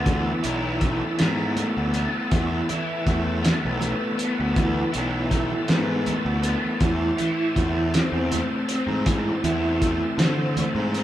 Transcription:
Already playing: picked electric bass D2, overdriven electric guitar A3 B3 E4, tonewheel organ E4 A4 B4 A5
0.05 overdriven electric guitar E3, kick, closed hi-hat, high conga
0.43 picked electric bass B1, overdriven electric guitar E4, closed hi-hat, low conga
0.81 overdriven electric guitar A3, kick, closed hi-hat, high conga
1.01 low conga
1.18 picked electric bass G#2, overdriven electric guitar B3, snare, closed hi-hat
1.56 overdriven electric guitar A3, closed hi-hat, high conga, low conga
1.77 picked electric bass D2
1.94 overdriven electric guitar B3, closed hi-hat
2.31 picked electric bass E2, overdriven electric guitar E3, kick, closed hi-hat, high conga
2.51 low conga
2.69 overdriven electric guitar E4, closed hi-hat, low conga
3.07 picked electric bass E2, overdriven electric guitar A3, kick, closed hi-hat
3.26 low conga
3.42 overdriven electric guitar B3, snare, closed hi-hat
3.65 picked electric bass B1
3.80 overdriven electric guitar A3, closed hi-hat, high conga, low conga
4.01 low conga
4.17 overdriven electric guitar B3, closed hi-hat, low conga
4.40 picked electric bass D2
4.56 overdriven electric guitar E3, kick, closed hi-hat, high conga
4.92 picked electric bass B1, overdriven electric guitar E4, closed hi-hat
5.31 overdriven electric guitar A3, kick, closed hi-hat, high conga
5.50 low conga
5.68 picked electric bass G#2, overdriven electric guitar B3, snare, closed hi-hat, low conga
5.88 low conga
6.06 overdriven electric guitar A3, closed hi-hat, high conga, low conga
6.25 picked electric bass D2, low conga
6.43 overdriven electric guitar B3, closed hi-hat
6.63 low conga
6.81 picked electric bass E2, overdriven electric guitar E3, tonewheel organ E4 C5, kick, closed hi-hat, high conga
7.18 overdriven electric guitar E4, closed hi-hat, low conga
7.56 picked electric bass E2, overdriven electric guitar A3, kick, closed hi-hat, high conga
7.76 low conga
7.93 overdriven electric guitar C4, snare, closed hi-hat
8.12 picked electric bass E2
8.31 overdriven electric guitar A3, closed hi-hat, high conga, low conga
8.51 low conga
8.68 overdriven electric guitar C4, closed hi-hat, low conga
8.87 picked electric bass G#2, low conga
9.06 overdriven electric guitar E3, kick, closed hi-hat, high conga
9.26 low conga
9.44 picked electric bass E2, overdriven electric guitar E4, closed hi-hat, low conga
9.82 overdriven electric guitar A3, kick, closed hi-hat, high conga
10.01 low conga
10.18 picked electric bass D3, overdriven electric guitar C4, snare, closed hi-hat
10.57 overdriven electric guitar A3, closed hi-hat, high conga, low conga
10.75 picked electric bass G#2, low conga
10.94 overdriven electric guitar C4, closed hi-hat

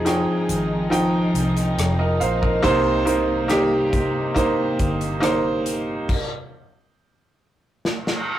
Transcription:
Already playing: fingered electric bass F1, string section C3 F3 G#3 D#4, grand piano F3 D#4 G#4, alto saxophone G#4
0.05 grand piano F3 D#4 G5, cross-stick, closed hi-hat
0.49 fingered electric bass G#1, closed hi-hat
0.90 grand piano F3 D#4 G5, closed hi-hat
1.34 fingered electric bass C2, closed hi-hat
1.57 closed hi-hat
1.78 fingered electric bass F1, cross-stick, closed hi-hat
1.99 grand piano A#4 D#5
2.20 fingered electric bass A#1, grand piano C5 F5, closed hi-hat
2.42 grand piano A#4 D#5, kick
2.62 fingered electric bass C2, grand piano C3 A#3 D#4 C5, string section G3 A#3, kick, closed hi-hat
3.05 grand piano A#3 D#4 C5, closed hi-hat
3.48 grand piano A#3 D#4 G4, cross-stick, closed hi-hat
3.93 kick, closed hi-hat
4.34 grand piano A#3 D#4 C5, kick, closed hi-hat
4.79 fingered electric bass G1, kick, closed hi-hat
5.01 closed hi-hat
5.20 grand piano A#3 D#4 C5, cross-stick, closed hi-hat
5.66 closed hi-hat
6.09 kick, crash
7.84 snare, reverse cymbal
8.07 snare

